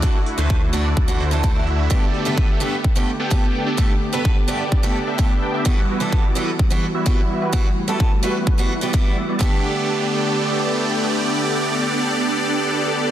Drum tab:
HH |-o-o-o-o|-o-o-o-o|-o-----o|--------|
BD |o-o-o-o-|o-o-o-o-|o-o-o-o-|o-o-o-o-|

HH |--------|--------|--------|
BD |o-o-o-o-|o-------|--------|